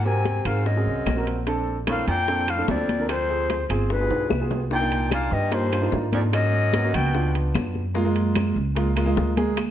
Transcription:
Already playing: G#2
0.04 C3 C4 F#4 A#4 G#5, high bongo, high conga
0.25 high bongo, high conga, high timbale, low timbale
0.45 G#2 C4 F#4 A#4 F5, high bongo, high conga, high timbale, claves
0.66 F#2 D#5, high bongo, high conga
0.76 C4 F#4 G#4
0.86 C2, high conga
1.06 A#1, high bongo, low bongo, high conga, high timbale, low timbale, claves
1.16 C4 F#4 A#4
1.27 high bongo, high timbale
1.47 C4 D4 A4, high bongo, high conga, high timbale
1.67 high conga
1.87 A2 C4 D4 A#4 F5, high bongo, high conga, high timbale, low timbale, claves
2.08 F2 A#2 G5, high bongo, high conga, high timbale
2.27 C4 D4 A4, high bongo, high conga
2.48 A2 F5, high bongo, high conga, high timbale, claves
2.57 C4 D4 A4
2.68 D2 F2 D5, high bongo, low bongo, high conga, low timbale
2.89 high bongo, high conga, high timbale
2.98 C4 D4 A#4
3.09 F2 C5, high bongo, high conga, high timbale, claves
3.28 C4 F4 G#4, high bongo, high conga
3.50 high bongo, high conga, high timbale, low timbale
3.69 G1 C4 F4 G#4, high bongo, high conga, high timbale, claves
3.90 D2 B4, high bongo, high conga
3.99 B3 F4 G#4
4.10 B1, high conga, high timbale
4.30 C2, high bongo, high conga, low timbale, claves
4.40 B3 F4 G#4
4.51 low bongo, low timbale
4.70 A#2 A#3 D4 D#4 F4 G5, high bongo, high conga
4.81 A#3 D4 D#4 F4
4.91 high bongo, high conga, high timbale
5.11 A#2 F5, high bongo, high conga, high timbale, claves
5.32 G2 D#5
5.51 D#2 A#3 D4 D#4 F4 C5, high bongo, high conga, high timbale
5.72 A#3 D4 D#4 F4, high bongo, high conga, high timbale, claves
5.82 A#3 D4 D#4 F4
5.92 G#2 A#3 D4 D#4 F4, high bongo, low bongo, high conga, low timbale
6.12 F2 A#3 D4 D#4 F4 D5, high bongo, high conga, high timbale
6.33 F#2 D#5, high bongo, high conga, high timbale, claves
6.53 high conga
6.73 A#3 B3 F#4, high bongo, high conga, high timbale
6.83 A#3 B3 F#4
6.93 C#2 B2 G5, high bongo, high conga, low conga, high timbale, claves
7.13 B3 D4 F4, high bongo, high conga
7.35 high bongo, high conga, high timbale
7.55 F#2, high bongo, low bongo, high conga, high timbale, claves
7.75 high bongo, high conga
7.94 G#3 A#3 F4, high bongo, high conga
8.04 G#3 A#3 F4
8.16 high bongo, high conga, high timbale
8.35 high bongo, high conga, high timbale, claves
8.56 C#2
8.75 G#3 A#3 F4, high bongo, high conga, high timbale
8.96 G#3 A#3 F4, high bongo, high conga, high timbale, claves
9.06 G#3 A#3 F4
9.16 D2 G#3 A#3 F4, high bongo, low bongo, high conga
9.36 G#3 A#3 G#4, high bongo, high conga, high timbale
9.57 high bongo, high conga, high timbale, claves

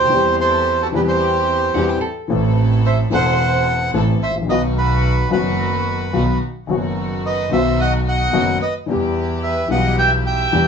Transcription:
Already playing: D2 G4 C5
0.04 D#2
0.09 E2 E3 G3 C4 E4 G4
0.40 A4 C5
0.81 F#4 A4
0.92 E2 E3 G3 C4 E4 G4 B4
0.96 G4
1.08 G4 C5
1.74 E2 E3 G3 C4 E4 F#4 G4
1.89 G4
2.01 A4
2.28 A1 A2 E3 A3 C4 E4 A4
2.85 C5 E5
3.10 E1 E2 E3 A3 C4 E4 A4 C5 F#5
3.94 A1 A2 E3 A3 C4 E4 A4
4.22 A1 C5 E5
4.28 G#1
4.35 A1
4.42 A#1
4.47 B1 B2 D#3 F#3 B3 D#4 F#4 B4 D#5
4.51 F#4
4.77 F#4 B4
5.29 F#1 F#2 D#3 F#3 B3 D#4 F#4 B4
5.33 F#4
6.13 B1 B2 D#3 F#3 B3 D#4 F#4
6.67 F#1 F#2 D#3 F#3 B3 D#4 F#4
6.71 F#4
7.25 B4 D#5
7.49 B1 B2 D#3 F#3 B3 D#4 F#4 C5 E5
7.79 D#5 F#5
8.08 D#5 F#5
8.33 F#1 F#2 D#3 F#3 B3 D#4 F#4
8.61 B4 D#5
8.86 E2 E3 G3 B3 E4 G4
8.90 G4
9.44 B4 E5
9.68 B1 B2 E3 G3 B3 E4 G4 D#5 F#5
9.72 G4
9.99 E5 G5
10.26 E5 G5
10.52 E2 E3 G3 B3 E4 G4

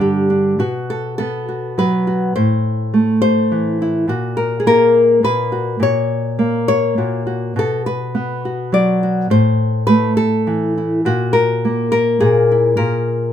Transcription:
Already playing: G2 G3 D4
0.00 D3 G4
0.30 D4
0.59 B2 F#4
0.90 A4
1.18 B3 A4
1.49 F#4
1.78 F#3 B4
2.07 F#4
2.36 A2 C5
2.94 A3
3.22 C5
3.52 E3
3.82 E4
4.08 A#2 F#4
4.37 A#4
4.60 G#4
4.66 A#3 A#4
5.23 A#2 B4
5.52 F#4
5.80 A#2 C#5
6.39 A#3
6.68 C#5
6.98 A#2 F#4
7.27 F#4
7.56 B2 A4
7.86 B4
8.15 B3
8.45 F#4
8.72 F#3 D5
9.03 F#4
9.30 A2 C5
9.87 A3 B4
10.17 A4
10.47 E3
10.78 E4
11.05 A#2 F#4
11.33 A#4
11.65 A#3
11.92 A#4
12.20 A#2 G#4
12.52 E4
12.77 A#2 A#4

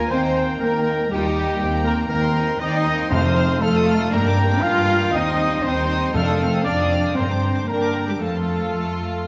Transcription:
Already playing: A#3 F4 A#4 G#5 A#5
0.00 G#5
0.10 D#2 A#3 C4 D#4 C5 G5 C6
0.26 A#5
0.37 A#3 G5
0.53 A#5
0.59 D#2 A#3 C4 D#4 A#4 G5 A#5
0.65 G5
0.78 A#5
0.87 A#3 G5
1.03 A#5
1.11 D#2 G3 A#3 D#4 G4 G5
1.19 F4
1.26 G4 A#5
1.38 G5
1.49 A#5
1.61 D#2 C4 G5
1.74 A#5
1.85 A#3 A#4 G5 A#5
1.99 A#5
2.09 D#2 A#3 C4 D#4 A#4 G5 A#5
2.24 C6
2.36 D#4 A#5
2.49 C6
2.60 D#2 C4 D#4 D#5 G5 A#5 D#6
2.67 D5
2.74 D#5 C6
2.85 A#3 A#5
2.99 C6
3.10 F2 A3 C4 D#4 C5 F5 C6 F6
3.26 D#6
3.37 C4 F6
3.50 D#6
3.61 F2 A3 D#4 F4 A4 F5 A5 F6
3.76 D#6
3.89 F6
4.01 D#6
4.11 G2 G3 A#3 D4 A#4 G5 A#5
4.26 D6
4.37 C4 A#5
4.51 D6
4.61 G2 A#3 F4 F5 A#5 F6
4.77 D6
4.90 A#5
5.02 D6
5.12 D#2 G3 C4 D#4 D#5 G5 D#6
5.28 C6
5.41 D#6
5.51 C6
5.62 D#2 G3 C4 D#4 C5 G5 C6 D#6
5.79 C6
5.91 D#6
6.03 C6
6.13 F2 D#3 A3 C4 D4 A4 F5 A5 F6
6.28 D#6
6.41 C4 F6
6.54 D#6
6.64 F2 D4 D5 D6 F6
6.79 D#6
6.91 C4 F6
7.05 D#6
7.15 G2 D3 A#3 C4 D4 C5 G5 A#5 C6
7.31 D6
7.42 C4 A#5
7.56 D6
7.68 G2 D3 A#3 D4 A#4 G5 A#5
7.81 D6
7.94 A#5
8.07 G3 G4 G5 D6
8.19 F2 F3 A3 C4 F4 A4 F5 A5
8.35 C6
8.48 A5
8.62 C6
8.75 F2 A3 A5
8.91 C6
9.03 A5
9.17 C6

